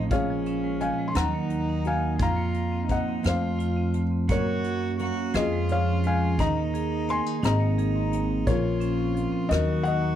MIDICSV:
0, 0, Header, 1, 7, 480
1, 0, Start_track
1, 0, Key_signature, -5, "minor"
1, 0, Tempo, 696056
1, 75, Time_signature, 6, 3, 24, 8
1, 7003, End_track
2, 0, Start_track
2, 0, Title_t, "Felt piano"
2, 0, Program_c, 0, 0
2, 0, Note_on_c, 0, 75, 74
2, 80, Note_on_c, 0, 77, 78
2, 85, Note_off_c, 0, 75, 0
2, 88, Note_on_c, 0, 73, 65
2, 533, Note_off_c, 0, 73, 0
2, 554, Note_off_c, 0, 77, 0
2, 557, Note_on_c, 0, 80, 81
2, 565, Note_on_c, 0, 77, 62
2, 734, Note_off_c, 0, 80, 0
2, 738, Note_off_c, 0, 77, 0
2, 743, Note_on_c, 0, 84, 73
2, 792, Note_off_c, 0, 84, 0
2, 800, Note_on_c, 0, 82, 75
2, 804, Note_on_c, 0, 78, 60
2, 1251, Note_off_c, 0, 78, 0
2, 1290, Note_off_c, 0, 82, 0
2, 1291, Note_on_c, 0, 80, 80
2, 1293, Note_on_c, 0, 77, 67
2, 1507, Note_off_c, 0, 77, 0
2, 1529, Note_off_c, 0, 80, 0
2, 1534, Note_on_c, 0, 77, 64
2, 1535, Note_on_c, 0, 82, 81
2, 1978, Note_off_c, 0, 77, 0
2, 2009, Note_on_c, 0, 78, 71
2, 2011, Note_on_c, 0, 75, 59
2, 2020, Note_off_c, 0, 82, 0
2, 2229, Note_off_c, 0, 75, 0
2, 2251, Note_off_c, 0, 78, 0
2, 2257, Note_on_c, 0, 72, 60
2, 2264, Note_on_c, 0, 77, 70
2, 2764, Note_off_c, 0, 72, 0
2, 2767, Note_off_c, 0, 77, 0
2, 2972, Note_on_c, 0, 70, 64
2, 2978, Note_on_c, 0, 73, 77
2, 3663, Note_off_c, 0, 70, 0
2, 3666, Note_off_c, 0, 73, 0
2, 3695, Note_on_c, 0, 68, 61
2, 3697, Note_on_c, 0, 75, 77
2, 3915, Note_off_c, 0, 68, 0
2, 3916, Note_off_c, 0, 75, 0
2, 3942, Note_on_c, 0, 73, 60
2, 3945, Note_on_c, 0, 77, 82
2, 4159, Note_off_c, 0, 73, 0
2, 4161, Note_off_c, 0, 77, 0
2, 4184, Note_on_c, 0, 77, 71
2, 4186, Note_on_c, 0, 80, 81
2, 4400, Note_off_c, 0, 77, 0
2, 4401, Note_off_c, 0, 80, 0
2, 4414, Note_on_c, 0, 82, 84
2, 4415, Note_on_c, 0, 75, 69
2, 4863, Note_off_c, 0, 75, 0
2, 4863, Note_off_c, 0, 82, 0
2, 4897, Note_on_c, 0, 84, 98
2, 4898, Note_on_c, 0, 80, 65
2, 5116, Note_off_c, 0, 80, 0
2, 5138, Note_off_c, 0, 84, 0
2, 5138, Note_on_c, 0, 82, 84
2, 5140, Note_on_c, 0, 75, 66
2, 5641, Note_off_c, 0, 82, 0
2, 5642, Note_off_c, 0, 75, 0
2, 5842, Note_on_c, 0, 73, 79
2, 5847, Note_on_c, 0, 70, 59
2, 6289, Note_off_c, 0, 73, 0
2, 6292, Note_off_c, 0, 70, 0
2, 6544, Note_on_c, 0, 75, 88
2, 6561, Note_on_c, 0, 70, 68
2, 6771, Note_off_c, 0, 75, 0
2, 6780, Note_off_c, 0, 70, 0
2, 6782, Note_on_c, 0, 78, 92
2, 6809, Note_on_c, 0, 75, 69
2, 7003, Note_off_c, 0, 75, 0
2, 7003, Note_off_c, 0, 78, 0
2, 7003, End_track
3, 0, Start_track
3, 0, Title_t, "Cello"
3, 0, Program_c, 1, 42
3, 70, Note_on_c, 1, 61, 85
3, 793, Note_on_c, 1, 63, 87
3, 803, Note_off_c, 1, 61, 0
3, 1513, Note_off_c, 1, 63, 0
3, 1516, Note_on_c, 1, 65, 78
3, 1969, Note_off_c, 1, 65, 0
3, 1982, Note_on_c, 1, 63, 81
3, 2236, Note_on_c, 1, 65, 75
3, 2246, Note_off_c, 1, 63, 0
3, 2720, Note_off_c, 1, 65, 0
3, 2964, Note_on_c, 1, 66, 99
3, 3418, Note_off_c, 1, 66, 0
3, 3450, Note_on_c, 1, 66, 92
3, 3681, Note_on_c, 1, 65, 93
3, 3691, Note_off_c, 1, 66, 0
3, 4415, Note_on_c, 1, 63, 97
3, 4425, Note_off_c, 1, 65, 0
3, 5117, Note_off_c, 1, 63, 0
3, 5122, Note_on_c, 1, 63, 84
3, 5843, Note_on_c, 1, 65, 81
3, 5853, Note_off_c, 1, 63, 0
3, 6551, Note_on_c, 1, 66, 95
3, 6561, Note_off_c, 1, 65, 0
3, 7003, Note_off_c, 1, 66, 0
3, 7003, End_track
4, 0, Start_track
4, 0, Title_t, "Nylon-string guitar"
4, 0, Program_c, 2, 24
4, 0, Note_on_c, 2, 53, 59
4, 73, Note_off_c, 2, 53, 0
4, 74, Note_on_c, 2, 46, 69
4, 76, Note_on_c, 2, 53, 57
4, 83, Note_on_c, 2, 56, 59
4, 86, Note_on_c, 2, 61, 60
4, 92, Note_on_c, 2, 68, 71
4, 551, Note_off_c, 2, 56, 0
4, 559, Note_on_c, 2, 56, 58
4, 770, Note_off_c, 2, 61, 0
4, 773, Note_off_c, 2, 68, 0
4, 780, Note_off_c, 2, 53, 0
4, 783, Note_on_c, 2, 51, 69
4, 793, Note_off_c, 2, 46, 0
4, 796, Note_off_c, 2, 56, 0
4, 1281, Note_on_c, 2, 66, 50
4, 1489, Note_off_c, 2, 66, 0
4, 1508, Note_off_c, 2, 51, 0
4, 1514, Note_on_c, 2, 41, 73
4, 1992, Note_on_c, 2, 60, 59
4, 2207, Note_off_c, 2, 60, 0
4, 2220, Note_off_c, 2, 41, 0
4, 2228, Note_on_c, 2, 41, 68
4, 2721, Note_on_c, 2, 60, 46
4, 2933, Note_off_c, 2, 60, 0
4, 2958, Note_off_c, 2, 41, 0
4, 2963, Note_on_c, 2, 42, 73
4, 3450, Note_on_c, 2, 58, 57
4, 3657, Note_off_c, 2, 42, 0
4, 3659, Note_off_c, 2, 58, 0
4, 3696, Note_on_c, 2, 41, 64
4, 3699, Note_on_c, 2, 53, 54
4, 3704, Note_on_c, 2, 56, 55
4, 3712, Note_on_c, 2, 61, 55
4, 3715, Note_on_c, 2, 65, 58
4, 4165, Note_off_c, 2, 56, 0
4, 4173, Note_on_c, 2, 56, 48
4, 4386, Note_off_c, 2, 53, 0
4, 4392, Note_off_c, 2, 61, 0
4, 4406, Note_on_c, 2, 51, 72
4, 4413, Note_off_c, 2, 41, 0
4, 4423, Note_off_c, 2, 65, 0
4, 4885, Note_on_c, 2, 60, 60
4, 5010, Note_off_c, 2, 60, 0
4, 5010, Note_on_c, 2, 63, 44
4, 5122, Note_off_c, 2, 51, 0
4, 5127, Note_on_c, 2, 44, 67
4, 5128, Note_off_c, 2, 63, 0
4, 5129, Note_off_c, 2, 56, 0
4, 5130, Note_on_c, 2, 51, 55
4, 5138, Note_on_c, 2, 60, 52
4, 5141, Note_on_c, 2, 63, 53
4, 5149, Note_on_c, 2, 68, 62
4, 5606, Note_off_c, 2, 60, 0
4, 5614, Note_on_c, 2, 60, 48
4, 5813, Note_off_c, 2, 44, 0
4, 5818, Note_off_c, 2, 60, 0
4, 5819, Note_off_c, 2, 63, 0
4, 5824, Note_off_c, 2, 68, 0
4, 5843, Note_off_c, 2, 51, 0
4, 5849, Note_on_c, 2, 46, 76
4, 5855, Note_on_c, 2, 53, 63
4, 5861, Note_on_c, 2, 58, 54
4, 5868, Note_on_c, 2, 61, 54
4, 5872, Note_on_c, 2, 65, 71
4, 6321, Note_off_c, 2, 58, 0
4, 6330, Note_on_c, 2, 58, 59
4, 6533, Note_off_c, 2, 58, 0
4, 6534, Note_off_c, 2, 53, 0
4, 6540, Note_off_c, 2, 61, 0
4, 6559, Note_off_c, 2, 46, 0
4, 6568, Note_on_c, 2, 51, 72
4, 6569, Note_off_c, 2, 65, 0
4, 6571, Note_on_c, 2, 58, 52
4, 6577, Note_on_c, 2, 63, 58
4, 6580, Note_on_c, 2, 66, 61
4, 7003, Note_off_c, 2, 51, 0
4, 7003, Note_off_c, 2, 58, 0
4, 7003, Note_off_c, 2, 63, 0
4, 7003, Note_off_c, 2, 66, 0
4, 7003, End_track
5, 0, Start_track
5, 0, Title_t, "Vibraphone"
5, 0, Program_c, 3, 11
5, 0, Note_on_c, 3, 53, 53
5, 0, Note_on_c, 3, 57, 46
5, 0, Note_on_c, 3, 60, 58
5, 77, Note_off_c, 3, 53, 0
5, 85, Note_on_c, 3, 53, 75
5, 130, Note_off_c, 3, 57, 0
5, 130, Note_off_c, 3, 60, 0
5, 198, Note_off_c, 3, 53, 0
5, 207, Note_on_c, 3, 53, 61
5, 323, Note_on_c, 3, 61, 62
5, 440, Note_on_c, 3, 56, 49
5, 547, Note_off_c, 3, 53, 0
5, 555, Note_on_c, 3, 53, 53
5, 672, Note_off_c, 3, 56, 0
5, 680, Note_on_c, 3, 56, 53
5, 794, Note_off_c, 3, 53, 0
5, 795, Note_on_c, 3, 54, 76
5, 845, Note_off_c, 3, 56, 0
5, 845, Note_off_c, 3, 61, 0
5, 920, Note_on_c, 3, 58, 57
5, 1166, Note_on_c, 3, 63, 54
5, 1267, Note_off_c, 3, 58, 0
5, 1275, Note_on_c, 3, 58, 54
5, 1388, Note_off_c, 3, 63, 0
5, 1397, Note_on_c, 3, 63, 50
5, 1514, Note_off_c, 3, 54, 0
5, 1514, Note_on_c, 3, 53, 75
5, 1562, Note_off_c, 3, 58, 0
5, 1563, Note_off_c, 3, 63, 0
5, 1631, Note_on_c, 3, 58, 56
5, 1875, Note_on_c, 3, 60, 47
5, 1994, Note_off_c, 3, 58, 0
5, 2002, Note_on_c, 3, 58, 58
5, 2116, Note_off_c, 3, 60, 0
5, 2126, Note_on_c, 3, 60, 54
5, 2239, Note_on_c, 3, 57, 65
5, 2241, Note_off_c, 3, 58, 0
5, 2286, Note_off_c, 3, 53, 0
5, 2291, Note_off_c, 3, 60, 0
5, 2350, Note_off_c, 3, 57, 0
5, 2358, Note_on_c, 3, 57, 54
5, 2474, Note_on_c, 3, 65, 61
5, 2596, Note_on_c, 3, 60, 57
5, 2712, Note_off_c, 3, 57, 0
5, 2720, Note_on_c, 3, 57, 48
5, 2828, Note_off_c, 3, 60, 0
5, 2837, Note_on_c, 3, 60, 42
5, 2958, Note_on_c, 3, 58, 77
5, 2962, Note_off_c, 3, 57, 0
5, 3008, Note_off_c, 3, 60, 0
5, 3008, Note_off_c, 3, 65, 0
5, 3072, Note_off_c, 3, 58, 0
5, 3081, Note_on_c, 3, 58, 51
5, 3202, Note_on_c, 3, 66, 57
5, 3328, Note_on_c, 3, 61, 49
5, 3441, Note_off_c, 3, 58, 0
5, 3449, Note_on_c, 3, 58, 53
5, 3559, Note_off_c, 3, 61, 0
5, 3567, Note_on_c, 3, 61, 52
5, 3686, Note_on_c, 3, 53, 71
5, 3733, Note_off_c, 3, 66, 0
5, 3735, Note_off_c, 3, 61, 0
5, 3736, Note_off_c, 3, 58, 0
5, 3811, Note_on_c, 3, 56, 52
5, 3931, Note_on_c, 3, 68, 57
5, 4045, Note_on_c, 3, 61, 54
5, 4158, Note_off_c, 3, 56, 0
5, 4166, Note_on_c, 3, 56, 54
5, 4277, Note_off_c, 3, 61, 0
5, 4285, Note_on_c, 3, 61, 46
5, 4408, Note_off_c, 3, 53, 0
5, 4408, Note_on_c, 3, 63, 73
5, 4455, Note_off_c, 3, 61, 0
5, 4456, Note_off_c, 3, 56, 0
5, 4458, Note_off_c, 3, 68, 0
5, 4530, Note_on_c, 3, 58, 51
5, 4648, Note_on_c, 3, 68, 65
5, 4772, Note_off_c, 3, 63, 0
5, 4772, Note_on_c, 3, 63, 53
5, 4879, Note_off_c, 3, 58, 0
5, 4887, Note_on_c, 3, 58, 55
5, 5002, Note_off_c, 3, 63, 0
5, 5010, Note_on_c, 3, 63, 53
5, 5121, Note_off_c, 3, 63, 0
5, 5121, Note_on_c, 3, 63, 73
5, 5174, Note_off_c, 3, 58, 0
5, 5174, Note_off_c, 3, 68, 0
5, 5243, Note_on_c, 3, 58, 60
5, 5366, Note_on_c, 3, 68, 63
5, 5487, Note_on_c, 3, 60, 55
5, 5589, Note_off_c, 3, 58, 0
5, 5597, Note_on_c, 3, 58, 52
5, 5709, Note_off_c, 3, 60, 0
5, 5717, Note_on_c, 3, 60, 45
5, 5838, Note_off_c, 3, 63, 0
5, 5840, Note_on_c, 3, 53, 80
5, 5885, Note_off_c, 3, 58, 0
5, 5886, Note_off_c, 3, 60, 0
5, 5889, Note_off_c, 3, 68, 0
5, 5949, Note_off_c, 3, 53, 0
5, 5957, Note_on_c, 3, 53, 53
5, 6070, Note_on_c, 3, 61, 64
5, 6193, Note_on_c, 3, 60, 53
5, 6298, Note_off_c, 3, 53, 0
5, 6307, Note_on_c, 3, 53, 51
5, 6419, Note_off_c, 3, 60, 0
5, 6428, Note_on_c, 3, 60, 49
5, 6548, Note_on_c, 3, 54, 67
5, 6550, Note_off_c, 3, 53, 0
5, 6599, Note_off_c, 3, 60, 0
5, 6599, Note_off_c, 3, 61, 0
5, 6661, Note_off_c, 3, 54, 0
5, 6670, Note_on_c, 3, 54, 53
5, 6792, Note_on_c, 3, 63, 57
5, 6911, Note_on_c, 3, 58, 57
5, 7003, Note_off_c, 3, 54, 0
5, 7003, Note_off_c, 3, 58, 0
5, 7003, Note_off_c, 3, 63, 0
5, 7003, End_track
6, 0, Start_track
6, 0, Title_t, "Upright bass"
6, 0, Program_c, 4, 32
6, 0, Note_on_c, 4, 33, 94
6, 74, Note_off_c, 4, 33, 0
6, 74, Note_on_c, 4, 34, 84
6, 625, Note_off_c, 4, 34, 0
6, 795, Note_on_c, 4, 39, 97
6, 1516, Note_off_c, 4, 39, 0
6, 1516, Note_on_c, 4, 41, 75
6, 2069, Note_off_c, 4, 41, 0
6, 2238, Note_on_c, 4, 41, 93
6, 2962, Note_off_c, 4, 41, 0
6, 2962, Note_on_c, 4, 42, 80
6, 3516, Note_off_c, 4, 42, 0
6, 3685, Note_on_c, 4, 41, 95
6, 4406, Note_off_c, 4, 41, 0
6, 4406, Note_on_c, 4, 39, 88
6, 4957, Note_off_c, 4, 39, 0
6, 5124, Note_on_c, 4, 32, 100
6, 5839, Note_off_c, 4, 32, 0
6, 5839, Note_on_c, 4, 34, 86
6, 6386, Note_off_c, 4, 34, 0
6, 6556, Note_on_c, 4, 39, 97
6, 7003, Note_off_c, 4, 39, 0
6, 7003, End_track
7, 0, Start_track
7, 0, Title_t, "Drums"
7, 74, Note_on_c, 9, 42, 63
7, 75, Note_on_c, 9, 36, 81
7, 143, Note_off_c, 9, 42, 0
7, 144, Note_off_c, 9, 36, 0
7, 316, Note_on_c, 9, 42, 49
7, 385, Note_off_c, 9, 42, 0
7, 556, Note_on_c, 9, 42, 49
7, 625, Note_off_c, 9, 42, 0
7, 792, Note_on_c, 9, 42, 66
7, 804, Note_on_c, 9, 37, 84
7, 861, Note_off_c, 9, 42, 0
7, 873, Note_off_c, 9, 37, 0
7, 1033, Note_on_c, 9, 42, 49
7, 1102, Note_off_c, 9, 42, 0
7, 1272, Note_on_c, 9, 42, 46
7, 1341, Note_off_c, 9, 42, 0
7, 1511, Note_on_c, 9, 42, 63
7, 1514, Note_on_c, 9, 36, 92
7, 1580, Note_off_c, 9, 42, 0
7, 1583, Note_off_c, 9, 36, 0
7, 1753, Note_on_c, 9, 42, 44
7, 1822, Note_off_c, 9, 42, 0
7, 1992, Note_on_c, 9, 42, 45
7, 1995, Note_on_c, 9, 36, 64
7, 2061, Note_off_c, 9, 42, 0
7, 2064, Note_off_c, 9, 36, 0
7, 2234, Note_on_c, 9, 42, 65
7, 2247, Note_on_c, 9, 37, 82
7, 2303, Note_off_c, 9, 42, 0
7, 2316, Note_off_c, 9, 37, 0
7, 2480, Note_on_c, 9, 42, 52
7, 2549, Note_off_c, 9, 42, 0
7, 2714, Note_on_c, 9, 42, 44
7, 2783, Note_off_c, 9, 42, 0
7, 2957, Note_on_c, 9, 42, 66
7, 2960, Note_on_c, 9, 36, 88
7, 3025, Note_off_c, 9, 42, 0
7, 3029, Note_off_c, 9, 36, 0
7, 3200, Note_on_c, 9, 42, 53
7, 3269, Note_off_c, 9, 42, 0
7, 3442, Note_on_c, 9, 42, 49
7, 3511, Note_off_c, 9, 42, 0
7, 3680, Note_on_c, 9, 42, 63
7, 3692, Note_on_c, 9, 37, 82
7, 3749, Note_off_c, 9, 42, 0
7, 3761, Note_off_c, 9, 37, 0
7, 3922, Note_on_c, 9, 42, 50
7, 3991, Note_off_c, 9, 42, 0
7, 4161, Note_on_c, 9, 42, 52
7, 4230, Note_off_c, 9, 42, 0
7, 4405, Note_on_c, 9, 42, 68
7, 4407, Note_on_c, 9, 36, 86
7, 4474, Note_off_c, 9, 42, 0
7, 4476, Note_off_c, 9, 36, 0
7, 4651, Note_on_c, 9, 42, 54
7, 4720, Note_off_c, 9, 42, 0
7, 4887, Note_on_c, 9, 42, 50
7, 4956, Note_off_c, 9, 42, 0
7, 5129, Note_on_c, 9, 42, 69
7, 5142, Note_on_c, 9, 37, 82
7, 5198, Note_off_c, 9, 42, 0
7, 5211, Note_off_c, 9, 37, 0
7, 5368, Note_on_c, 9, 42, 51
7, 5437, Note_off_c, 9, 42, 0
7, 5604, Note_on_c, 9, 42, 47
7, 5673, Note_off_c, 9, 42, 0
7, 5840, Note_on_c, 9, 42, 64
7, 5841, Note_on_c, 9, 36, 76
7, 5909, Note_off_c, 9, 42, 0
7, 5910, Note_off_c, 9, 36, 0
7, 6076, Note_on_c, 9, 42, 49
7, 6145, Note_off_c, 9, 42, 0
7, 6320, Note_on_c, 9, 42, 47
7, 6389, Note_off_c, 9, 42, 0
7, 6555, Note_on_c, 9, 42, 59
7, 6568, Note_on_c, 9, 37, 87
7, 6624, Note_off_c, 9, 42, 0
7, 6637, Note_off_c, 9, 37, 0
7, 6791, Note_on_c, 9, 42, 51
7, 6860, Note_off_c, 9, 42, 0
7, 7003, End_track
0, 0, End_of_file